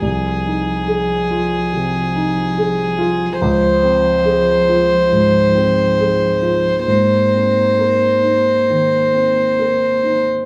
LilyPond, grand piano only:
\new Staff \with { instrumentName = "Grand piano" } { \time 4/4 \key aes \major \tempo 4 = 69 c,8 ees'8 aes'8 f'8 c8 ees'8 aes'8 f'8 | des,8 c'8 aes'8 f'8 aes,8 c'8 aes'8 f'8 | aes,8 c'8 bes'8 ees'8 ees8 c'8 bes'8 ees'8 | }